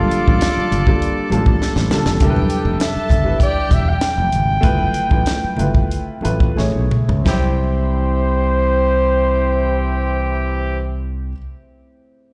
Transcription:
Already playing: G3 A#3 D4 F4 A4 D5 D6
0.11 closed hi-hat, muted conga
0.28 A1, kick, high conga
0.41 snare, closed hi-hat, muted conga
0.57 muted fingered electric bass stroke, high conga
0.72 G1, closed hi-hat, muted conga, low conga
0.86 G3 A#3 D4 F4 A4, kick
1.02 closed hi-hat, muted conga
1.30 A1 G3 A#3 D4 F4 A4 A5, closed hi-hat, muted conga, high conga
1.46 kick
1.61 muted fingered electric bass stroke, snare
1.76 A1, snare, high conga
1.91 G3 A#3 D4 F4 A4, snare, muted conga, low conga
2.06 F1, snare
2.20 E1 G3 D4 E4 G4 A#4 G5, kick, closed hi-hat, muted conga, low conga
2.30 B4
2.36 high conga
2.50 closed hi-hat
2.65 F1, high conga
2.80 A4 E5 A5, snare, closed hi-hat, muted conga
2.95 muted fingered electric bass stroke, high conga
3.09 G1, kick, closed hi-hat, muted conga, low conga
3.24 G3 D4 E4 B4
3.40 G4 D5 G5, kick, closed hi-hat, muted conga
3.69 E1, kick, closed hi-hat, high conga
3.73 E5
3.89 G5
4.01 snare, closed hi-hat, muted conga
4.16 F1, high conga
4.32 G#1, closed hi-hat, muted conga, low conga
4.61 G1 A3 E4 F4 B4, kick, closed hi-hat, muted conga, low conga
4.79 high conga
4.94 closed hi-hat, muted conga
5.09 A1 A3 E4 F4 B4, kick, high conga
5.26 snare, closed hi-hat, muted conga
5.41 muted fingered electric bass stroke, high conga
5.57 G1 A3 E4 F4 B4, closed hi-hat, low conga
5.75 kick
5.91 closed hi-hat
6.21 A3 E4 F4 B4 A5, closed hi-hat, high conga
6.25 A1
6.40 kick
6.56 A1 A3 E4 G#4 C#5 G#5, snare, muted conga
6.73 B1, high conga
6.91 mid tom, muted conga, low conga
7.09 C#2, floor tom
7.21 C4 E4
7.25 C2 E3 C4 E4 G4 C5 G5, kick, snare, high conga
7.30 C5

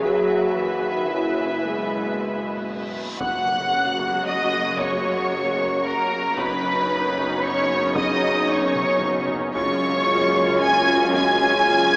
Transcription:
0.01 F#1 F#3 F#4 B4 E5 G#5, taiko
0.56 E3
0.81 D#3, taiko
1.09 C#3 E4
1.51 B3
1.62 B2 G#3, reverse cymbal
3.19 F#1 F#2 C#3 F#3 A#3 C#4 F#4 F#5 F#6, taiko, impact
4.00 taiko
4.26 D#5 D#6
4.79 C#5 C#6, taiko
5.58 taiko
5.84 A#4 A#5
6.37 F#1 F#2 C#3 F#3 B3 C#4 D#4 B4 B5, taiko
7.17 taiko
7.44 C#5 C#6
7.96 D#5 D#6, taiko
8.49 C#5 C#6
8.75 taiko mid
9.02 taiko mid
9.29 taiko low
9.52 F#1 F#2 C#3 G#3 C#4 F4 C#5 C#6, taiko
9.56 F4
10.35 taiko
10.60 G#5 G#6
11.13 G#5 G#6, taiko
11.93 taiko

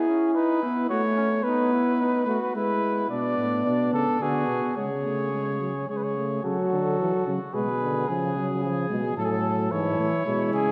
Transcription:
Already playing: E4 G#4
0.08 C#4
0.34 D#4 B4
0.63 B3 E4
0.89 A3 F#4 C#5
1.17 C#4
1.43 B3 D#4 B4
1.73 E4
2.00 D#4
2.26 A3 F#4
2.54 G#3 E4 B4
3.10 B2 B3 D4 D5
3.38 A2
3.65 B2 D4
3.93 C#3 A4
4.20 D3 B3 F#4 G#4
4.48 B2
4.76 C#3 G#3 G#4 C#5
5.04 A3
5.32 G#3
5.61 F#3
5.88 C#3 G#3 G#4 C#5
5.97 B4
6.04 C#5
6.17 A3
6.44 C#3 F#3 F#4 A4
6.72 D3
7.00 E3
7.27 C#3 F#3
7.54 B2 G#3 G#4 B4
7.82 D3
8.08 C#3 F3 G#4
8.36 F#3
8.63 F3 G#4
8.90 B2 G#3
9.16 A2 F#3 A4
9.25 G#4
9.31 A4
9.71 G#2 E3 E4 C#5
9.99 A2
10.25 B2 G#3 E4
10.53 C#3 G#4

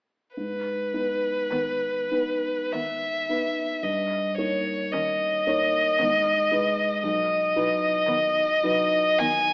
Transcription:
0.36 G#2 B4
0.93 B3 D#4 B4
1.50 D#3 B3
2.11 B3 D#4 B4
2.72 D#3 B3 E5
3.29 B3 D#4 B4
3.83 G2 D#5
4.37 A#3 D#4 C#5
4.92 D#3 C#4 D#5
5.47 A#3 D#4 C#5
5.99 G#2 D#3 B3
6.51 G#3 D#4 B4
7.03 B1 D#5
7.56 F#3 D#4 B4
8.06 D#3 B3
8.63 F#3 D#4 B4
9.19 D#3 B3 G#5

